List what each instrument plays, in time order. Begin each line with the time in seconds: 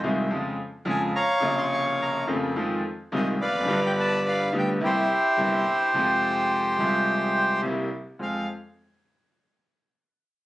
0.03 grand piano C2 C3 D#3 G#3 C4 F4
0.30 grand piano F2 C#3 F3 G#3 F4
0.85 grand piano F2 C#3 F3 G#3 F4
0.90 bandoneon G#5
1.15 bandoneon C#5 F5 A#5
1.40 grand piano A#1 A#2 C3 C#3 A#3
1.44 grand piano F4
1.58 bandoneon C6
1.74 bandoneon C#6
2.02 bandoneon A#5
2.27 grand piano F1 F2 C#3 A#3 C4 F4
2.56 grand piano F2 D#3 F3 G#3 C4 F4
3.12 grand piano C2 C3 D#3 G#3 C4 F4, bandoneon D#5
3.41 bandoneon B4 D5 F5
3.46 grand piano E2
3.54 grand piano F2
3.60 grand piano F#2
3.66 grand piano G1 G2 D3 G3 B3 F4
3.86 bandoneon G5
4.00 bandoneon A5
4.28 bandoneon F5
4.52 grand piano D2 D3 G3 B3 F4
4.58 bandoneon G5
4.80 grand piano C2 C3 G3 A#3 E4, bandoneon E4 G4
4.86 bandoneon C5
5.37 grand piano G1 G2 C3 G3 A#3 E4
5.92 grand piano F2 C3 F3 G#3
5.97 grand piano F4
6.79 grand piano C2 C3 F3 G#3 F4
7.62 grand piano C2 C3 G3 A#3 E4
8.19 grand piano F2 G#3 C4 F4, bandoneon F5